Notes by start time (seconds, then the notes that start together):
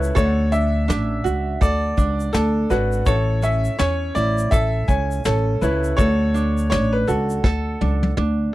Already playing: C#4 E4 A4 B4 C#5
0.03 shaker
0.15 D2 D4 F#4 A4 C#5 E5, kick, shaker
0.25 F#5
0.52 D4 E5, shaker
0.88 A1 D4, snare, shaker
1.24 C#2 F#4, shaker
1.61 D2 A4 D5, kick, shaker
1.97 C#2 D4, kick, shaker
2.20 shaker
2.33 D2 D4 A4, snare, shaker
2.70 G#1 D4 F#4 A4 B4 C#5 F#5, snare, shaker
2.92 shaker
3.06 A1 E4 A4 C#5, kick, shaker
3.42 C#4 E5, shaker
3.65 shaker
3.79 E2 C#4 C#5, snare, shaker
4.15 A1 E4 D5, shaker
4.38 shaker
4.51 A1 A4 E5, kick, shaker
4.88 C#2 C#4 G#5, kick, shaker
5.11 shaker
5.25 A1 C#4 A4, snare, shaker
5.61 C#2 E4 A4 B4 C#5, shaker
5.84 shaker
5.97 D2 D4 F#4 A4 C#5 F#5, kick, shaker
6.01 C#5
6.34 D4, shaker
6.58 shaker
6.70 A1 D4 C#5, snare, shaker
6.93 B4
7.08 C#2 F#4 A4, shaker
7.30 shaker
7.44 D2 A4, kick, snare
7.81 C#2 D4, high tom
8.03 high tom
8.17 D2 D4, mid tom